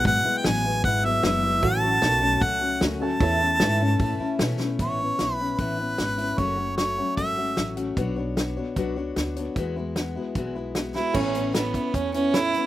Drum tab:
CC |--------|--------|--------|--------|
HH |o-o-o-o-|o-o-o-o-|o-o-o-o-|x-x-x-xx|
SD |--o---o-|--o---o-|--o---oo|--o---o-|
BD |o---o---|o---o---|o---o---|o---o---|

CC |--------|--------|--------|x-------|
HH |x-x-x-xx|x-x-x-xx|x-x-x-x-|-xxxxxxx|
SD |--o---o-|--o---o-|--o---oo|--o---o-|
BD |o---o---|o---o---|o---o---|o--oo---|